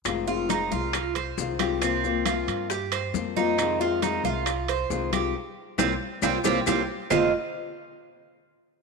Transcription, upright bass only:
X:1
M:4/4
L:1/8
Q:1/4=136
K:Fm
V:1 name="Upright bass" clef=bass
F,,,3 C,,3 C,,2- | C,,3 G,,3 F,,2- | F,,3 C,,3 C,,2 | z2 C,, z C,, C,, C,, z |
F,,, z6 z |]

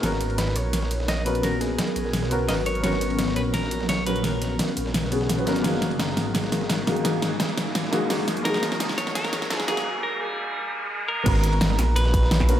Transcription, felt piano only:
X:1
M:4/4
L:1/16
Q:1/4=171
K:F#mix
V:1 name="Felt piano"
[B,CFA]12- [B,CFA]2 [B,CFA]2 | [B,CFA] z8 z [B,CFA]2 [B,CFA]4 | [B,CFA]12- [B,CFA]2 [B,CFA]2 | [B,CFA] z8 z [B,CFG]3 [B,CFB] [B,CFA]2 |
[A,DFG]12- [A,DFG]2 [A,DFG]2 | [A,DFG] z8 z [A,DFG]2 [A,DFG]4 | [A,DFG]12- [A,DFG]2 [A,DFG]2 | z16 |
[B,CFa]12- [B,CFa]2 [B,CFA]2 |]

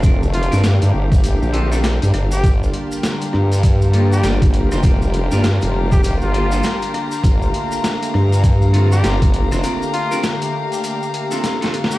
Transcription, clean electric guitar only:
X:1
M:4/4
L:1/16
Q:"Swing 16ths" 1/4=100
K:Gm
V:1 name="Clean electric guitar"
[CDFB] z2 [CDFB] z6 [CDFA] [CDFA] z4 | z8 z2 [B,DFA]2 [B,DFG]3 [B,DFc] | [B,DFB] z2 [B,DFB] z6 [B,DFA] [B,DFA] z4 | z8 z2 [CDFA]2 [CDFG]3 [CDFc] |
[CDFB] z2 [CDFB] z6 z [CDFA]2 [CDFA] z2 |]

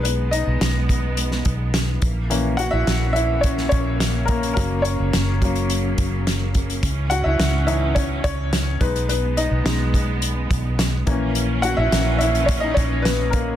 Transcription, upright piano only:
X:1
M:4/4
L:1/16
Q:1/4=106
K:G#m
V:1 name="Upright piano"
[B,B]2 [Dd]8 z6 | z2 [Ff] [Ee]3 [Ee]2 [Cc]2 [Cc]4 [A,A]2 | A2 [Cc]8 z6 | z2 [Ff] [Ee]3 [Ee]2 [Cc]2 [Cc]4 B2 |
[B,B]2 [Dd]8 z6 | z2 [Ff] [Ee]3 [Ee]2 c [Dd] [Cc]2 [B,B]2 [A,A]2 |]
V:2 name="Upright piano"
[G,B,D]4 z12 | [E,A,C]16 | [F,A,C]6 [F,A,C]2 z8 | z6 [E,CD]6 z2 [G,B,D]2 |
z4 [G,B,D]2 z8 [E,A,C]2- | [E,A,C]4 [E,A,C]2 z8 z2 |]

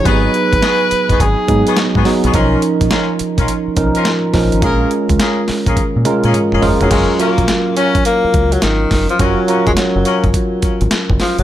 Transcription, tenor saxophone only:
X:1
M:4/4
L:1/16
Q:"Swing 16ths" 1/4=105
K:Bbphr
V:1 name="Tenor saxophone" clef=bass
c8 A4 z4 | z16 | z12 z2 F, G, | A,2 B,4 D2 B,3 G, E,3 F, |
G,3 A, G,4 z6 F, G, |]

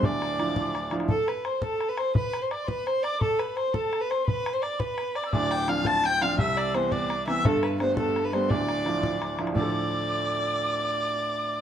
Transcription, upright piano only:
X:1
M:6/8
L:1/8
Q:3/8=113
K:Ddor
V:1 name="Upright piano"
[D,,,D,,]2 [F,DE]2 z [F,DE] | z6 | z6 | z6 |
z6 | [D,,,D,,]2 [F,CD]2 z [F,CD] | C,,2 [E,B,C]2 z [E,B,C] | [G,,,G,,]2 [G,A,B,]2 z [G,A,B,] |
[D,,,D,,]2 [F,DE]2 z [F,DE] | [D,,A,,F,DEA]6- | [D,,A,,F,DEA]6 |]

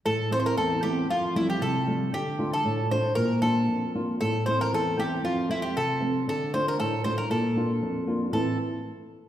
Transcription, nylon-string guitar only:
X:1
M:2/4
L:1/8
Q:1/4=116
K:Aphr
V:1 name="Nylon-string guitar"
A,, [A,CE] E,, [A,CE] | F,, [F,G,A,] C, [F,G,A,] | D, [A,DF] A,, [A,DF] | B,, [B,DF] F,, [B,DF] |
A,, [A,CE] E,, [A,CE] | F,, [F,A,C] C, [F,A,C] | D, [A,DF] A,, [A,DF] | B,, [B,DF] F,, [B,DF] |
[A,,E,A,CE] z3 |]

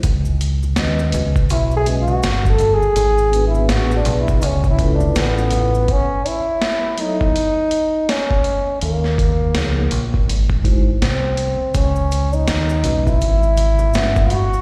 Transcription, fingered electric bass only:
X:1
M:4/4
L:1/16
Q:"Swing 16ths" 1/4=82
K:F#dor
V:1 name="Fingered electric bass" clef=bass
C,,4 D,,2 C,,2 B,,,4 =G,,,3 z | G,,,4 A,,,2 B,,,2 C,,4 A,,,4 | z16 | D,,4 C,,2 ^A,,,2 G,,,4 ^B,,,3 z |
C,,4 D,,2 B,,,2 G,,,4 =G,,,3 z |]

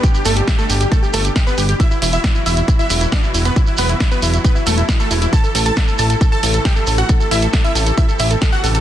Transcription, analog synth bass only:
X:1
M:4/4
L:1/8
Q:1/4=136
K:Em
V:1 name="Analog synth bass" clef=bass
z G,,, z G,,, z G,,, z G,,, | z E,,, z E,,, z E,,, z E,,, | z E,,, z E,,, z E,,, z E,,, | z A,,, z A,,, z A,,, z A,,, |
z A,,, z A,,, z A,,, z A,,, |]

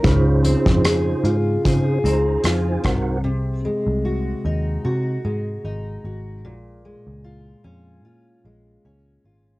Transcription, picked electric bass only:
X:1
M:4/4
L:1/16
Q:"Swing 16ths" 1/4=75
K:Db
V:1 name="Picked electric bass" clef=bass
D,,3 F,,3 A,,2 D,2 D,,2 F,,2 C,,2- | C,,3 C,,3 E,,2 C,2 A,,2 A,,,2 A,,,2 | B,,,3 D,,3 F,,2 B,,2 B,,,2 D,,2 A,,,2 |]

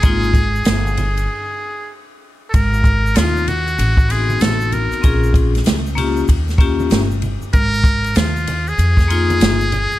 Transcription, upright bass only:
X:1
M:4/4
L:1/16
Q:"Swing 16ths" 1/4=96
K:Ab
V:1 name="Upright bass" clef=bass
A,,,4 G,,,4 z8 | A,,,4 E,,4 =A,,,4 A,,,3 z | B,,,4 D,,4 E,,4 G,,,3 z | A,,,4 E,,4 F,,4 G,,,3 z |]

